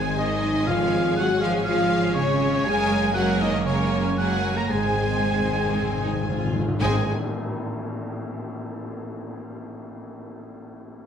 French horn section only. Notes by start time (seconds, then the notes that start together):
Already playing: G#4
0.18 D#4
0.66 F4
1.19 F#4
1.42 F4
1.68 F4
2.16 C#4
2.67 G#4
3.15 F#4
3.41 D#4
3.66 C#4
4.17 F#4
4.57 A#4
4.69 G#4
6.82 G#4